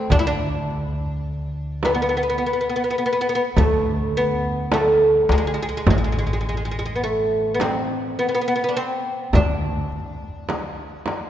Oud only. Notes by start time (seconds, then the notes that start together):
Already playing: C4
0.12 D4
0.19 E4
0.27 D4
1.85 B3
1.94 B3
2.02 B3
2.09 B3
2.17 B3
2.23 B3
2.29 B3
2.38 B3
2.46 B3
2.53 B3
2.61 B3
2.69 B3
2.76 B3
2.84 B3
2.90 B3
2.98 B3
3.06 B3
3.13 B3
3.21 B3
3.29 B3
3.35 B3
3.58 A3
4.17 B3
4.74 A3
5.32 G#3
5.38 G#3
5.47 G#3
5.54 G#3
5.62 G#3
5.69 G#3
5.77 G#3
5.90 G#3
5.98 G#3
6.04 G#3
6.12 G#3
6.19 G#3
6.27 G#3
6.33 G#3
6.41 G#3
6.49 G#3
6.57 G#3
6.65 G#3
6.71 G#3
6.79 G#3
6.86 G#3
6.96 B3
7.04 A3
7.55 B3
7.61 C4
8.19 B3
8.29 B3
8.35 B3
8.41 B3
8.48 B3
8.56 B3
8.64 B3
8.69 D4
8.77 C4
9.35 D4